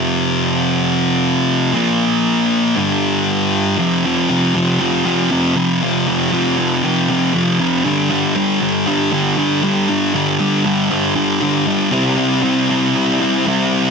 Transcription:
Already playing: F2 C3 F3
1.73 A#2 F3 A#3
2.76 G2 D3 G3
3.78 F2 C3 F3
4.05 F2 C3 F3
4.29 F2 C3 F3
4.54 F2 C3 F3
4.79 F2 C3 F3
5.05 F2 C3 F3
5.31 F2 C3 F3
5.56 F2 C3 F3
5.82 F2 C3 F3
6.08 F2 C3 F3
6.32 F2 C3 F3
6.58 F2 C3 F3
6.83 F2 C3 F3
7.09 F2 C3 F3
7.34 F2 C3 F3
7.60 F2 C3 F3
7.85 G2 D3 G3
8.10 G2 D3 G3
8.35 G2 D3 G3
8.61 G2 D3 G3
8.87 G2 D3 G3
9.12 G2 D3 G3
9.38 G2 D3 G3
9.63 G2 D3 G3
9.89 G2 D3 G3
10.14 G2 D3 G3
10.40 G2 D3 G3
10.64 G2 D3 G3
10.90 G2 D3 G3
11.15 G2 D3 G3
11.41 G2 D3 G3
11.66 G2 D3 G3
11.91 C3 G3 C4 E4
12.16 G3 C4 E4
12.42 C3 G3 C4 E4
12.69 G3 C4 E4
13.20 G3 C4 E4
13.45 C3 G3 C4 E4

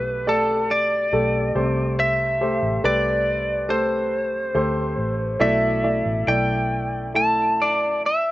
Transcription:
Already playing: B1 B2 A3 G4 B4
0.27 A3 G4 A4 D5
0.71 D5
1.13 B1 A3 G4 A4
1.55 C2 C3 A3 G4 C5
2.00 E5
2.41 A3 G4 C5
2.63 A1
2.84 C2 A3 G4 B4 D5
3.69 A3 G4 A4 C5
4.54 D2 A3 G4 C5
4.97 A1
5.40 B1 B2 A3 E4 D5 E5
5.83 A3 E4 D5
6.06 A1
6.27 B1 A3 E4 D5 G5
7.14 A3 E4 A4 A5
7.62 D5
8.06 E5

